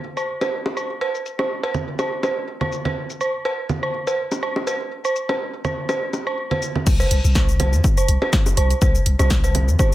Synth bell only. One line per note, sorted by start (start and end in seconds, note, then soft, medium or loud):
0.17 0.21 C5 medium
0.41 0.46 C5 medium
0.77 0.82 C5 medium
1.01 1.06 C5 medium
1.39 1.43 C5 medium
1.63 1.68 C5 medium
1.99 2.04 C5 medium
2.23 2.28 C5 medium
2.61 2.65 C5 medium
2.85 2.90 C5 medium
3.21 3.26 C5 medium
3.45 3.50 C5 medium
3.83 3.87 C5 medium
4.07 4.12 C5 medium
4.43 4.48 C5 medium
4.67 4.72 C5 medium
5.05 5.09 C5 medium
5.29 5.33 C5 medium
5.65 5.70 C5 medium
5.89 5.94 C5 medium
6.27 6.31 C5 medium
6.51 6.55 C5 medium
7.00 7.04 C5 medium
7.35 7.40 C5 medium
7.60 7.65 C5 medium
7.97 8.02 C5 medium
8.22 8.26 C5 medium
8.57 8.62 C5 medium
8.82 8.87 C5 medium
9.19 9.24 C5 medium
9.44 9.48 C5 medium
9.79 9.84 C5 medium